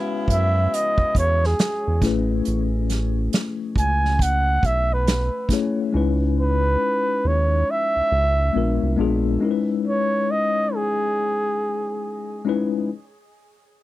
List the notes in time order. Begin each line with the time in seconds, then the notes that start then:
Already playing: C#3 G#3 B3 C#4 E4 F#4 B4
0.28 F#2 E5, kick, closed hi-hat
0.74 D#5, closed hi-hat
0.98 E2, kick
1.15 E2 C#5, kick, closed hi-hat
1.44 G#4, snare
1.59 snare, closed hi-hat
1.88 E2
2.01 A1 A3 C#4 E4 G#4, kick, snare, closed hi-hat
2.06 B4
2.45 A1, closed hi-hat
2.90 snare, closed hi-hat
3.33 snare, closed hi-hat
3.76 C#2 G#5, kick, closed hi-hat
4.05 snare
4.19 F#5, kick, closed hi-hat
4.63 B1 E5, kick, closed hi-hat
4.93 B4
5.07 snare, closed hi-hat
5.49 A3 C#4 E4 G#4, kick, snare, closed hi-hat
5.53 C#5
5.93 C#2 G#3 C#4 D#4 E4
5.97 B4
6.40 B4
7.25 D#2 C#5
7.71 E5
7.96 C#2
8.12 C#2
8.53 A#1 G#3 B3 D4 F4
8.57 A#4
8.83 C2
8.97 A#1 G#3 B3 D4 F4
9.01 G#4
9.40 G#3 C#4 D#4 E4
9.45 A#4
9.51 B4
9.88 C#5
10.31 D#5
10.75 G#4
12.45 G#3 C#4 D#4 E4
12.49 B4